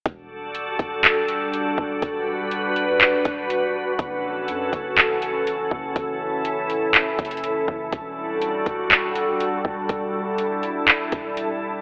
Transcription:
0.06 0.76 E1 loud
0.06 3.95 G3 medium
0.06 3.95 D4 medium
0.06 5.92 F#4 medium
0.06 2.01 A4 medium
0.06 kick loud
0.06 closed hi-hat medium
0.55 closed hi-hat medium
0.79 1.74 E1 loud
0.79 kick medium
0.79 closed hi-hat medium
1.04 clap loud
1.04 closed hi-hat medium
1.28 closed hi-hat medium
1.54 closed hi-hat medium
1.78 2.01 E1 loud
1.78 kick loud
2.02 3.21 E1 loud
2.02 3.97 B4 medium
2.02 kick loud
2.02 closed hi-hat medium
2.51 closed hi-hat medium
2.76 closed hi-hat medium
3.01 clap loud
3.01 closed hi-hat medium
3.25 3.96 E1 loud
3.25 kick loud
3.25 closed hi-hat medium
3.50 closed hi-hat medium
3.99 4.50 F#1 loud
3.99 7.88 E3 medium
3.99 7.89 C#4 medium
3.99 7.89 A4 medium
3.99 kick loud
3.99 closed hi-hat medium
4.48 4.72 F#2 loud
4.48 closed hi-hat medium
4.73 5.67 F#1 loud
4.73 kick medium
4.73 closed hi-hat medium
4.97 clap loud
4.97 closed hi-hat medium
5.22 closed hi-hat medium
5.47 closed hi-hat medium
5.71 5.95 F#1 loud
5.71 kick medium
5.96 7.15 F#1 loud
5.96 7.91 E4 medium
5.96 kick loud
5.96 closed hi-hat medium
6.45 closed hi-hat medium
6.70 closed hi-hat medium
6.94 clap loud
6.94 closed hi-hat medium
7.19 7.66 F#1 loud
7.19 kick loud
7.19 closed hi-hat medium
7.25 closed hi-hat medium
7.31 closed hi-hat medium
7.37 closed hi-hat medium
7.44 closed hi-hat medium
7.68 7.92 F#1 loud
7.68 kick medium
7.92 8.63 E1 loud
7.92 11.81 G3 medium
7.92 11.81 D4 medium
7.92 9.87 F#4 medium
7.92 11.81 A4 medium
7.92 kick loud
7.92 closed hi-hat medium
8.42 closed hi-hat medium
8.66 9.61 E1 loud
8.66 kick medium
8.66 closed hi-hat medium
8.91 clap loud
8.91 closed hi-hat medium
9.15 closed hi-hat medium
9.40 closed hi-hat medium
9.65 9.88 E1 loud
9.65 kick medium
9.89 11.08 E1 loud
9.89 11.81 E4 medium
9.89 kick loud
9.89 closed hi-hat medium
10.38 closed hi-hat medium
10.63 closed hi-hat medium
10.88 clap loud
10.88 closed hi-hat medium
11.12 11.81 E1 loud
11.12 kick loud
11.12 closed hi-hat medium
11.37 closed hi-hat medium

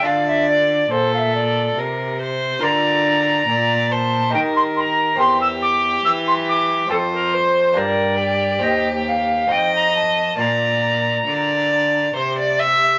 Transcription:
0.02 0.89 D3 medium
0.02 2.57 D4 soft
0.02 2.58 F4 soft
0.02 2.59 A4 soft
0.02 0.91 D5 medium
0.02 0.26 F5 medium
0.06 0.87 D3 soft
0.27 0.48 E5 medium
0.48 0.92 D5 medium
0.90 1.75 A#2 medium
0.90 1.73 A#2 soft
0.90 1.80 A4 medium
0.90 1.12 C5 medium
1.13 1.18 F5 medium
1.17 1.33 E5 medium
1.34 1.76 D5 medium
1.77 2.61 C3 medium
1.77 2.59 C3 soft
1.77 2.20 A#4 medium
2.21 2.65 C5 medium
2.59 3.47 D3 medium
2.59 4.28 F4 medium
2.59 4.29 A#4 medium
2.59 3.87 A#5 medium
2.63 3.45 D3 medium
2.63 3.48 D5 medium
3.48 4.35 A#2 medium
3.48 4.30 A#2 soft
3.48 3.93 D5 medium
3.91 4.34 C5 medium
3.91 4.33 A5 medium
4.30 5.19 D#3 medium
4.30 5.15 D#4 soft
4.30 5.15 G4 soft
4.30 5.16 A#4 soft
4.30 4.40 G5 medium
4.34 5.16 D#3 soft
4.34 5.21 A#4 medium
4.56 4.62 C6 medium
4.76 4.81 C6 medium
4.80 5.18 A#5 medium
5.16 6.03 E2 medium
5.16 6.85 C4 soft
5.16 6.86 G4 medium
5.16 6.92 G4 medium
5.16 6.86 A#4 soft
5.16 5.40 C6 medium
5.20 6.01 E2 medium
5.41 5.47 E6 medium
5.62 6.04 D6 medium
6.05 6.89 E3 medium
6.05 6.87 E3 medium
6.05 6.11 E6 medium
6.27 6.33 C6 medium
6.48 6.90 D6 medium
6.87 7.72 C4 soft
6.87 7.73 F4 soft
6.87 7.74 A4 soft
6.87 6.96 A4 medium
6.87 7.78 C5 medium
6.91 7.78 F2 medium
6.91 7.73 F2 medium
7.13 7.35 A#4 medium
7.34 7.79 C5 medium
7.73 8.62 G2 medium
7.73 8.59 A#3 medium
7.73 8.59 D4 soft
7.73 8.60 G4 medium
7.77 8.60 G2 medium
7.77 8.19 A#4 medium
7.77 8.64 D5 medium
8.20 9.48 G4 medium
8.59 9.49 D#2 medium
8.59 9.46 C4 soft
8.59 9.47 G4 soft
8.59 8.88 D#5 medium
8.64 9.47 D#2 soft
9.08 9.53 F5 medium
9.47 10.34 C4 soft
9.47 10.35 D#4 soft
9.47 10.36 F4 soft
9.51 10.37 F2 medium
9.51 10.35 F2 soft
9.51 10.37 D#5 medium
9.51 9.73 G5 medium
9.75 9.94 A#5 medium
9.95 10.41 A5 medium
10.35 11.25 A#2 medium
10.35 12.98 A#3 soft
10.35 12.99 D4 soft
10.35 12.99 F4 soft
10.39 11.23 A#2 medium
10.39 11.17 D5 medium
10.39 12.16 A#5 medium
11.27 12.14 D3 medium
11.27 12.12 D3 soft
11.27 12.11 D5 medium
12.15 12.99 C3 medium
12.15 12.99 C3 soft
12.15 12.36 C5 medium
12.39 12.61 D5 medium
12.60 12.99 E5 medium

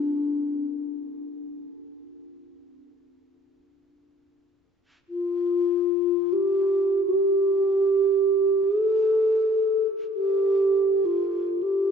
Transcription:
0.00 0.66 D4 medium
5.09 6.34 F4 medium
6.33 7.05 G4 medium
7.06 8.65 G4 medium
8.64 9.87 A4 medium
10.14 11.07 G4 medium
11.05 11.64 F4 medium
11.63 11.91 G4 medium

